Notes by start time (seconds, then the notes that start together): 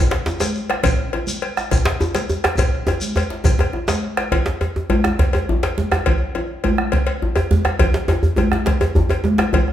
0.11 bombo rim, cowbell, djembe slap
0.26 djembe slap, djembe tone, shekere
0.40 cowbell, djembe slap, high conga, shekere
0.55 shekere
0.70 bombo rim, cowbell, djembe slap, high conga
0.83 bombo low, cowbell, djembe slap, low conga, djembe bass, shekere
1.00 djembe slap
1.13 cowbell, djembe tone
1.27 high conga, shekere
1.42 cowbell
1.57 bombo rim, djembe slap, high conga, shekere
1.71 bombo low, cowbell, djembe slap, high conga, low conga, djembe bass, shekere
1.85 bombo rim, cowbell, djembe slap
2.00 djembe tone, shekere
2.15 cowbell, djembe slap, high conga, shekere
2.29 djembe tone, high conga, shekere
2.44 bombo rim, cowbell, djembe slap, high conga
2.58 bombo low, cowbell, djembe slap, djembe tone, high conga, djembe bass, low conga, shekere
2.87 cowbell, djembe tone, shekere
3.01 high conga, shekere
3.16 bombo rim, cowbell, djembe tone, shekere
3.30 djembe slap
3.44 bombo rim, bombo low, cowbell, djembe slap, djembe tone, djembe bass, low conga, shekere
3.59 bombo rim, cowbell, djembe tone
3.73 bombo rim, djembe tone
3.88 bombo rim, cowbell, djembe slap, high conga, shekere
4.02 djembe slap
4.17 bombo rim, cowbell, djembe slap
4.32 bombo rim, bombo low, cowbell, low conga, djembe bass
4.46 djembe slap
4.61 cowbell, djembe tone
4.76 djembe tone
4.90 cowbell, high conga, djembe bass
5.04 bombo rim, djembe slap, djembe tone
5.19 bombo low, cowbell, djembe slap, djembe tone, low conga
5.33 cowbell, high conga, djembe tone
5.49 djembe tone, djembe bass
5.63 cowbell, djembe slap
5.78 djembe tone, high conga
5.92 bombo rim, cowbell, djembe slap, djembe tone
6.06 bombo rim, bombo low, cowbell, low conga, djembe bass
6.35 cowbell, djembe tone
6.64 cowbell, high conga, djembe bass
6.78 bombo rim, djembe tone
6.92 bombo low, cowbell, djembe slap, low conga
7.07 cowbell
7.22 djembe tone, djembe bass
7.36 cowbell, djembe tone
7.51 high conga, djembe bass
7.65 bombo rim, cowbell, djembe tone
7.79 bombo rim, bombo low, cowbell, djembe tone, low conga, djembe bass
7.94 djembe slap
8.08 cowbell, djembe tone
8.10 djembe tone
8.23 djembe bass
8.36 cowbell, djembe tone, high conga, djembe bass
8.51 bombo rim, djembe slap, djembe tone
8.66 bombo low, cowbell, djembe slap, low conga
8.81 cowbell, djembe tone, high conga
8.95 djembe tone, djembe bass
9.09 cowbell, djembe tone
9.24 djembe tone, high conga
9.38 bombo rim, cowbell, djembe slap, djembe tone
9.53 bombo low, cowbell, high conga, djembe bass, low conga
9.68 bombo rim, djembe slap